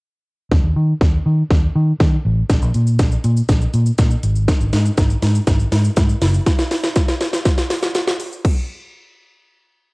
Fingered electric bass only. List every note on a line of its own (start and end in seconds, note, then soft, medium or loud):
0.51 0.59 D#2 medium
0.64 0.72 D#2 medium
0.76 0.92 D#3 loud
1.01 1.17 D#2 loud
1.26 1.42 D#3 loud
1.51 1.67 D#2 medium
1.75 1.92 D#3 loud
2.00 2.16 D#3 loud
2.25 2.41 A1 loud
2.50 2.58 A#1 medium
2.62 2.70 A#1 medium
2.75 3.01 A#2 loud
2.99 3.15 A#1 medium
3.24 3.40 A#2 loud
3.49 3.65 A#1 loud
3.74 3.90 A#2 loud
3.99 4.15 A#2 loud
4.23 4.48 G#1 loud
4.61 4.69 G#1 medium
4.73 4.89 G#2 loud
4.98 5.14 G#1 loud
5.22 5.39 G#2 loud
5.47 5.63 G#1 loud
5.72 5.88 G#2 loud
5.97 6.13 G#2 loud
6.22 6.38 F#1 medium